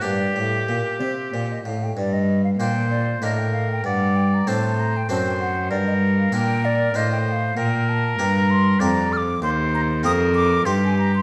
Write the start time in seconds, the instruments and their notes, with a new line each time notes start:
0.01 cello G2, harpsichord G2 A#3 D4, oboe G4, flute D5
0.36 cello A2, harpsichord A2
0.68 cello A#2, harpsichord A#2, flute A#4
1.00 cello C3, harpsichord C3, flute D5
1.04 flute C5
1.32 cello A#2, harpsichord A#2, flute D5
1.51 flute D#5
1.64 cello A2, harpsichord A2, flute F5
1.83 flute G5
1.96 cello G2, harpsichord G2, flute D5
2.13 flute D#5
2.44 flute F5
2.59 cello A#2, harpsichord A#2 A#3 D4, oboe C5, flute G5
2.90 flute D5
3.22 harpsichord A2 A#3 D4, cello A2, oboe A#4, flute D#5
3.38 flute G5
3.52 flute F5
3.72 flute G5
3.84 harpsichord G2, cello G2, oboe D5, flute F#5
4.16 flute G5
4.34 flute A#5
4.47 cello A2, harpsichord A2 A3 C4 D4, oboe C5, flute A5
4.80 flute A#5
4.97 flute G5
5.09 harpsichord F#2 A3 C4 D4, cello F#2, oboe C5, flute A5
5.27 flute G5
5.40 flute F#5
5.70 harpsichord G2, cello G2, oboe A#4, flute D5
5.87 flute D#5
6.19 flute F5
6.32 harpsichord A#2 A#3 D4, cello A#2, oboe A#4, flute G5
6.65 flute D5
6.94 cello A2, harpsichord A2 A#3 D4, oboe C5, flute D#5
7.12 flute G5
7.28 flute G5
7.32 flute F5
7.57 harpsichord A#2, cello A#2, oboe A#4, flute G5
7.89 flute A5
8.19 harpsichord G2 D4 G4, cello G2, flute A#5
8.51 flute C6
8.80 harpsichord F2 D4 G4, cello F2, oboe D5, flute A#5
9.13 flute F6
9.17 flute D6
9.42 harpsichord D#2, cello D#2, oboe C5, flute C6
9.74 flute A#5
10.03 harpsichord F2 D#4 G4, cello F2, oboe A#4, flute D#6
10.35 flute D6
10.65 cello G2, harpsichord G2 D#4 G4, oboe G4, flute C6
10.85 flute G#5
10.98 flute A#5
11.15 flute C6